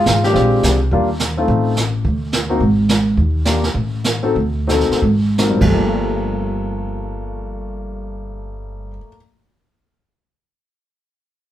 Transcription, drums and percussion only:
0.06 kick soft
0.06 snare medium
0.06 hi-hat pedal medium
0.24 snare soft
0.35 brush sweep soft
0.35 kick soft
0.35 snare soft
0.63 kick soft
0.63 snare medium
0.63 hi-hat pedal medium
0.91 brush sweep medium
0.91 kick soft
1.19 snare medium
1.19 hi-hat pedal medium
1.48 brush sweep soft
1.48 kick soft
1.77 snare medium
1.77 hi-hat pedal medium
2.05 brush sweep soft
2.05 kick soft
2.32 snare medium
2.32 hi-hat pedal medium
2.61 brush sweep soft
2.61 kick soft
2.89 snare medium
2.89 hi-hat pedal soft
3.17 brush sweep soft
3.17 kick soft
3.45 snare medium
3.45 hi-hat pedal soft
3.63 snare soft
3.75 brush sweep soft
3.75 kick soft
4.04 snare medium
4.04 hi-hat pedal medium
4.36 brush sweep soft
4.36 kick soft
4.69 snare soft
4.69 hi-hat pedal soft
4.80 snare soft
4.91 snare soft
5.02 brush sweep soft
5.02 kick soft
5.38 snare medium
5.38 hi-hat pedal medium
5.61 kick medium
5.61 crash medium

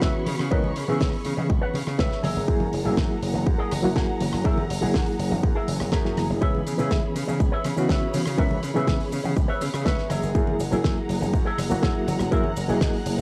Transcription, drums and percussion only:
0.02 kick loud
0.02 snare loud
0.26 open hi-hat loud
0.26 high conga medium
0.39 cross-stick medium
0.52 kick loud
0.64 high conga medium
0.76 open hi-hat loud
0.88 low conga medium
1.00 kick loud
1.00 snare loud
1.00 high conga medium
1.13 open hi-hat medium
1.25 open hi-hat loud
1.37 high conga loud
1.50 kick loud
1.74 open hi-hat loud
1.74 high conga medium
1.87 cross-stick medium
1.99 kick loud
1.99 snare loud
2.12 snare soft
2.23 cross-stick medium
2.23 open hi-hat loud
2.23 high conga medium
2.48 kick loud
2.60 high conga medium
2.73 open hi-hat loud
2.85 low conga medium
2.97 kick loud
2.97 snare loud
2.97 high conga medium
3.23 open hi-hat loud
3.34 high conga loud
3.47 kick loud
3.71 cross-stick medium
3.71 open hi-hat loud
3.71 high conga medium
3.96 kick loud
3.96 snare loud
4.20 open hi-hat loud
4.20 high conga medium
4.33 cross-stick medium
4.45 kick loud
4.58 high conga medium
4.70 open hi-hat loud
4.82 low conga medium
4.94 kick loud
4.94 snare loud
4.94 high conga medium
5.06 open hi-hat medium
5.19 open hi-hat loud
5.31 high conga medium
5.43 kick loud
5.68 open hi-hat loud
5.68 high conga medium
5.80 cross-stick medium
5.92 kick loud
5.92 snare loud
6.05 snare soft
6.17 cross-stick medium
6.17 open hi-hat loud
6.17 high conga loud
6.42 kick loud
6.42 cabasa soft
6.54 high conga medium
6.67 open hi-hat loud
6.67 cabasa medium
6.79 low conga medium
6.79 cabasa medium
6.91 kick loud
6.91 snare loud
6.91 high conga medium
6.91 cabasa medium
7.16 open hi-hat loud
7.16 cabasa medium
7.28 high conga medium
7.28 cabasa medium
7.40 kick loud
7.40 cabasa soft
7.64 cross-stick medium
7.64 open hi-hat loud
7.64 high conga medium
7.64 cabasa medium
7.77 cabasa medium
7.89 kick loud
7.89 snare loud
7.89 cabasa soft
8.14 open hi-hat loud
8.14 high conga medium
8.14 cabasa medium
8.26 cross-stick medium
8.26 cabasa medium
8.38 kick loud
8.38 cabasa medium
8.51 high conga medium
8.63 open hi-hat loud
8.63 cabasa medium
8.75 low conga medium
8.75 cabasa medium
8.87 kick loud
8.87 snare loud
8.87 high conga medium
8.87 cabasa soft
9.01 open hi-hat medium
9.12 open hi-hat loud
9.12 cabasa medium
9.24 high conga medium
9.24 cabasa medium
9.37 kick loud
9.37 cabasa medium
9.61 open hi-hat loud
9.61 high conga medium
9.61 cabasa medium
9.74 cross-stick medium
9.74 cabasa medium
9.86 kick loud
9.86 snare loud
9.86 cabasa soft
9.98 snare soft
10.10 cross-stick medium
10.10 open hi-hat loud
10.10 high conga medium
10.10 cabasa medium
10.23 cabasa medium
10.35 kick loud
10.35 cabasa soft
10.47 high conga medium
10.60 open hi-hat loud
10.60 cabasa medium
10.72 low conga medium
10.72 cabasa medium
10.84 kick loud
10.84 snare loud
10.84 high conga medium
10.84 cabasa soft
11.09 open hi-hat loud
11.09 cabasa medium
11.21 high conga medium
11.21 cabasa medium
11.34 kick loud
11.34 cabasa soft
11.58 cross-stick medium
11.58 open hi-hat loud
11.58 high conga medium
11.58 cabasa medium
11.71 cabasa medium
11.83 kick loud
11.83 snare loud
11.83 cabasa soft
12.08 open hi-hat medium
12.08 high conga medium
12.08 cabasa medium
12.19 cross-stick medium
12.19 cabasa medium
12.32 kick loud
12.32 cabasa soft
12.44 high conga medium
12.56 open hi-hat medium
12.56 cabasa medium
12.69 low conga medium
12.69 cabasa medium
12.81 kick loud
12.81 snare loud
12.81 high conga medium
12.81 cabasa medium
12.94 open hi-hat medium
13.06 open hi-hat loud
13.06 cabasa medium

